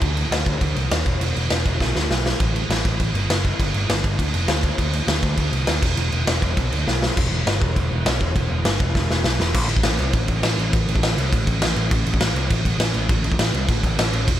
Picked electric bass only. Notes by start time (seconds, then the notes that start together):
0.02 D2
0.31 D2
0.47 D2
0.62 D2
0.76 C2
0.91 D#2
1.06 E1
1.21 E1
1.36 E1
1.51 E1
1.66 E1
1.80 B1
1.95 D2
2.10 B1
2.40 A1
2.70 A1
2.85 A1
3.00 A1
3.14 G1
3.30 F#1
3.60 G1
3.75 G1
3.89 G1
4.04 G1
4.19 D2
4.34 F1
4.48 D2
4.78 D2
5.08 D2
5.23 D2
5.38 D2
5.52 C2
5.68 D2
5.83 E1
5.98 E1
6.13 E1
6.28 E1
6.42 E1
6.57 B1
6.73 D2
6.87 B1
7.17 E1
7.32 E1
7.47 G1
7.62 E1
7.76 E1
7.91 E1
8.06 B1
8.21 E1
8.36 E1
8.50 E1
8.65 G1
8.80 E1
8.95 E1
9.10 E1
9.24 B1
9.40 E1
9.54 A1
9.70 A1
9.84 A1
10.00 C2
10.14 A1
10.28 A1
10.44 A1
10.58 A1
10.73 A1
10.88 A1
11.03 A1
11.18 C2
11.32 A1
11.47 A1
11.61 A1
11.76 A1
11.91 A1
12.06 A1
12.21 A1
12.35 C2
12.51 A1
12.65 A1
12.79 A1
12.94 A1
13.09 A1
13.24 A1
13.39 A1
13.54 C2
13.69 A1
13.83 A1
13.98 A1
14.13 A1
14.28 E1